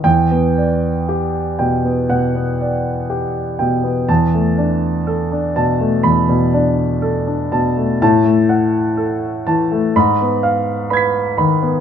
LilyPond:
<<
  \new Staff \with { instrumentName = "Grand piano" } { \time 4/4 \key b \minor \tempo 4 = 61 << { g''4 r2. | r2 b''4 r4 | a''4 r4 b''4 <b'' gis''' b'''>4 | } \\ { r8 d''8 g'8 g''8 fis''8 d''8 g'8 g''8 | a''8 d''8 a'8 a''4 d''8 a'8 a''8 | r8 fis''8 a'8 a''8 r8 eis''8 b'8 b''8 | } >> }
  \new Staff \with { instrumentName = "Grand piano" } { \time 4/4 \key b \minor e,16 b8 r8. b,16 b16 b,16 b8 r8. b,16 b16 | e,16 a16 d'8 r16 d'16 b,16 a16 e,16 b,16 d'8 r16 d'16 b,16 a16 | a,16 a8 r8. e16 a16 gis,16 b8 r8. dis16 b16 | }
>>